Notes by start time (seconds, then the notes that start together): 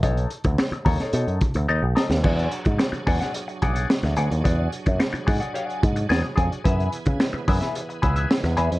0.03 B1 D#4 A4 C#5, kick, closed hi-hat
0.17 closed hi-hat
0.30 closed hi-hat
0.44 D2, muted clean electric guitar stroke, kick, closed hi-hat
0.58 muted clean electric guitar stroke, snare
0.72 muted picked electric bass stroke, muted clean electric guitar stroke, closed hi-hat
0.85 D#2 D#4 A4 C#5, kick, open hi-hat
1.00 D#4 A4 C#5, snare, closed hi-hat
1.13 B2 D#4 A4 C#5, closed hi-hat
1.27 F#2, closed hi-hat
1.41 muted clean electric guitar stroke, kick, closed hi-hat
1.54 D2, muted clean electric guitar stroke, closed hi-hat
1.69 D#2 D#4 A4 D#5
1.82 B1, muted clean electric guitar stroke
1.95 D#4 A4 D#5, snare
2.10 D#2, snare
2.24 E2 F#3 D4 G#4 D5 F#5, kick, crash
2.39 closed hi-hat
2.51 closed hi-hat
2.65 G#2, muted clean electric guitar stroke, kick, closed hi-hat
2.79 muted clean electric guitar stroke, snare
2.92 muted clean electric guitar stroke, muted picked electric bass stroke, closed hi-hat
3.07 E2 G#4 D5 F#5, kick, open hi-hat
3.21 G#4 D5 F#5, snare, closed hi-hat
3.34 muted clean electric guitar stroke, closed hi-hat
3.48 muted clean electric guitar stroke, closed hi-hat
3.62 B1 G#4 D5 F#5, kick, closed hi-hat
3.75 G#4 D5 F#5, closed hi-hat
3.89 muted clean electric guitar stroke, snare
4.03 D2, muted clean electric guitar stroke, snare, closed hi-hat
4.16 D2 G#4 D5 F#5, closed hi-hat
4.30 D#2, muted clean electric guitar stroke, closed hi-hat
4.44 E2 G#4 D5 F#5, kick, closed hi-hat
4.72 closed hi-hat
4.86 F#2, muted clean electric guitar stroke, kick, closed hi-hat
4.99 muted clean electric guitar stroke, snare
5.13 muted clean electric guitar stroke, muted picked electric bass stroke, closed hi-hat
5.27 G#2 G#4 D5 F#5, kick, open hi-hat
5.40 G#4 D5 F#5, closed hi-hat
5.54 G4 C#5 F5, closed hi-hat
5.65 G#4 D5 F#5
5.70 closed hi-hat
5.83 G#2, muted clean electric guitar stroke, kick, closed hi-hat
5.96 muted clean electric guitar stroke, closed hi-hat
6.09 E2 G#4 D5 G#5, snare
6.23 muted clean electric guitar stroke
6.36 F2 G#4 D5 G#5, kick, closed hi-hat
6.51 muted clean electric guitar stroke, closed hi-hat
6.64 F#2 E3 B3 G#4 B4 E5, kick, closed hi-hat
6.80 closed hi-hat
6.92 closed hi-hat
7.06 C#3, muted clean electric guitar stroke, kick, closed hi-hat
7.20 muted clean electric guitar stroke, snare
7.33 muted clean electric guitar stroke, muted picked electric bass stroke
7.48 F#2 G#4 B4 E5, kick, open hi-hat
7.61 G#4 B4 E5, snare, closed hi-hat
7.75 muted clean electric guitar stroke, closed hi-hat
7.89 muted clean electric guitar stroke, closed hi-hat
8.02 C#2 G#4 B4 E5, kick, closed hi-hat
8.16 G#4 B4 E5, closed hi-hat
8.30 muted clean electric guitar stroke, snare
8.44 E2, muted clean electric guitar stroke, snare, closed hi-hat
8.57 E2 G#4 B4 E5, closed hi-hat
8.71 F2, muted clean electric guitar stroke, closed hi-hat